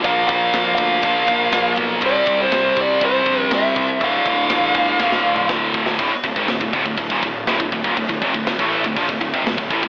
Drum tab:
CC |----------------|----------------|----------------|x-x-x-x-x-x-x-x-|
RD |x-x-x-x-x-x-x-x-|x-x-x-x-x-x-x-x-|x-x-x-x---------|----------------|
SD |----o-------o---|----o-------o---|----o---oo--o--o|----o-------o---|
T2 |----------------|----------------|-----------o----|----------------|
BD |o-o-o-o-o-o-o-o-|o-o-o-o-o-o-o-o-|o-o-o-o-o---o-o-|o-oo-oooooo--ooo|

CC |x-x-x-x-x-x-x-x-|
RD |----------------|
SD |----o-------o---|
T2 |----------------|
BD |oooo-o-ooooo-ooo|